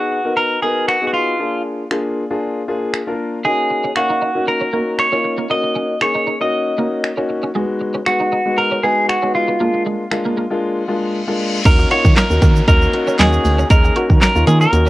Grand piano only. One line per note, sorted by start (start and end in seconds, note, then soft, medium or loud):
0.00 0.17 B3 medium
0.00 0.17 D#4 medium
0.00 0.17 F#4 medium
0.00 0.17 G#4 medium
0.25 0.55 B3 medium
0.25 0.55 D#4 medium
0.25 0.56 F#4 medium
0.25 0.56 A#4 medium
0.63 0.94 B3 medium
0.63 0.94 D#4 medium
0.63 0.94 F#4 medium
0.63 0.94 A#4 medium
1.01 1.32 B3 medium
1.01 1.32 D#4 medium
1.01 1.32 F#4 medium
1.01 1.32 G#4 medium
1.39 1.81 A#3 medium
1.39 1.81 D4 medium
1.39 1.81 F4 medium
1.39 1.81 G#4 medium
1.91 2.22 A#3 medium
1.91 2.22 D4 medium
1.91 2.22 F4 medium
1.91 2.22 G#4 medium
2.30 2.61 A#3 medium
2.30 2.61 D4 medium
2.30 2.61 F4 medium
2.30 2.61 G#4 medium
2.68 2.99 A#3 medium
2.68 2.99 D4 medium
2.68 2.99 F4 medium
2.68 2.99 G#4 medium
3.07 3.38 A#3 medium
3.07 3.38 D4 medium
3.07 3.38 F4 medium
3.07 3.38 A#4 medium
3.45 3.87 A#3 medium
3.45 3.87 C#4 medium
3.45 3.87 D#4 medium
3.45 3.87 F#4 medium
3.96 4.27 A#3 medium
3.96 4.27 C#4 medium
3.96 4.27 D#4 medium
3.96 4.27 F5 medium
4.35 4.66 A#3 medium
4.35 4.66 C#4 medium
4.35 4.66 D#4 medium
4.35 4.66 F#4 medium
4.73 5.04 A#3 medium
4.73 5.04 C#4 medium
4.73 5.04 D#4 medium
4.73 5.04 F#4 medium
5.12 5.43 A#3 medium
5.12 5.43 C#4 medium
5.12 5.43 D#4 medium
5.12 5.43 F4 medium
5.50 5.91 A#3 medium
5.50 5.91 C#4 medium
5.50 5.92 D#4 medium
5.50 5.92 F#4 medium
6.01 6.32 A#3 medium
6.01 6.32 C#4 medium
6.01 6.32 D#4 medium
6.01 6.32 G#4 medium
6.40 6.71 A#3 medium
6.40 6.71 C#4 medium
6.40 6.71 D#4 medium
6.40 6.71 F#4 medium
6.78 7.09 A#3 medium
6.78 7.09 C#4 medium
6.78 7.09 D#4 medium
6.78 7.09 F#4 medium
7.17 7.48 A#3 medium
7.17 7.48 C#4 medium
7.17 7.48 D#4 medium
7.17 7.48 F#4 medium
7.55 7.97 G#3 medium
7.55 7.97 B3 medium
7.55 7.97 D#4 medium
7.55 7.97 F#4 medium
8.06 8.37 G#3 medium
8.06 8.37 B3 medium
8.06 8.37 D#4 medium
8.06 8.37 F#4 medium
8.45 8.76 G#3 medium
8.45 8.76 B3 medium
8.45 8.76 D#4 medium
8.45 8.76 F#4 medium
8.83 9.14 G#3 medium
8.83 9.14 B3 medium
8.83 9.14 D#4 medium
8.83 9.14 F#4 medium
9.22 9.53 G#3 medium
9.22 9.53 B3 medium
9.22 9.53 D#4 medium
9.22 9.53 F#4 medium
9.60 10.02 G#3 medium
9.60 10.02 A#3 medium
9.60 10.02 D4 medium
9.60 10.02 F4 medium
10.11 10.42 G#3 medium
10.11 10.42 A#3 medium
10.11 10.43 D4 medium
10.11 10.43 F4 medium
10.50 10.81 G#3 medium
10.50 10.81 A#3 medium
10.50 10.81 D4 medium
10.50 10.81 F4 loud
10.88 11.19 G#3 medium
10.88 11.19 A#3 medium
10.88 11.19 D4 medium
10.88 11.19 F4 medium
11.27 11.58 G#3 medium
11.27 11.58 A#3 medium
11.27 11.58 D4 medium
11.27 11.58 F4 medium
11.65 11.86 A#3 medium
11.65 11.86 C#4 medium
11.65 11.86 D#4 medium
11.65 11.86 F#4 medium
11.91 12.22 A#3 medium
11.91 12.22 C#4 medium
11.91 12.22 D#4 medium
11.91 12.22 F4 medium
12.30 12.60 A#3 medium
12.30 12.61 C#4 medium
12.30 12.61 D#4 medium
12.30 12.61 F#4 medium
12.68 12.89 A#3 medium
12.68 12.89 C#4 medium
12.68 12.89 D#4 medium
12.68 12.89 F#4 medium
12.93 13.14 A#3 medium
12.93 13.14 C#4 medium
12.93 13.14 D#4 medium
12.93 13.14 F#4 medium
13.19 13.61 A#3 medium
13.19 13.61 C#4 medium
13.19 13.61 D#4 medium
13.19 13.61 F#4 medium
13.70 13.91 A#3 medium
13.70 13.91 C#4 medium
13.70 13.91 D#4 medium
13.70 13.91 G#4 medium
13.96 14.27 A#3 medium
13.96 14.27 C#4 medium
13.96 14.27 D#4 medium
13.96 14.27 F#4 medium
14.35 14.66 A#3 medium
14.35 14.66 C#4 medium
14.35 14.66 D#4 medium
14.35 14.66 F4 medium
14.73 14.89 A#3 medium
14.73 14.89 C#4 medium
14.73 14.89 D#4 medium
14.73 14.89 F#4 medium